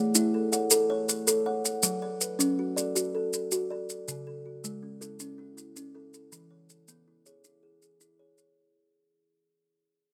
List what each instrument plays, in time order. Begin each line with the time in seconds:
Already playing: kalimba D5 F#5
0.15 kalimba A3 E4, maracas
0.34 kalimba A4
0.52 kalimba A4 C#5 F#5, maracas
0.71 kalimba A4, maracas
0.90 kalimba C#5
1.09 kalimba C#5, maracas
1.27 kalimba A4 C#5, maracas
1.46 kalimba C#5 F#5
1.65 kalimba F#5, maracas
1.83 kalimba F#3, maracas
2.02 kalimba D5
2.21 kalimba B4, maracas
2.39 kalimba F#3 C#4, maracas
2.59 kalimba F#4
2.76 kalimba F#4 A4 D5, maracas
2.95 kalimba F#4, maracas
3.15 kalimba A4
3.33 kalimba A4, maracas
3.52 kalimba F#4 A4, maracas
3.70 kalimba A4 D5
3.90 kalimba D5, maracas
4.08 kalimba C#3, maracas
4.27 kalimba A4
4.46 kalimba F#4
4.64 kalimba C#3 G#3, maracas
4.83 kalimba C#4
5.01 kalimba C#4 E4 A4, maracas
5.20 kalimba C#4, maracas
5.38 kalimba E4
5.57 kalimba E4, maracas
5.76 kalimba C#4 E4, maracas
5.95 kalimba E4 A4
6.14 kalimba A4, maracas
6.32 kalimba E3, maracas
6.51 kalimba C#5
6.70 kalimba A4, maracas
6.88 kalimba E3 B3, maracas
7.08 kalimba E4
7.26 kalimba E4 G#4 C#5, maracas
7.44 kalimba E4, maracas
7.63 kalimba G#4
7.82 kalimba G#4, maracas
8.01 kalimba E4 G#4, maracas
8.19 kalimba G#4 C#5
8.38 kalimba C#5, maracas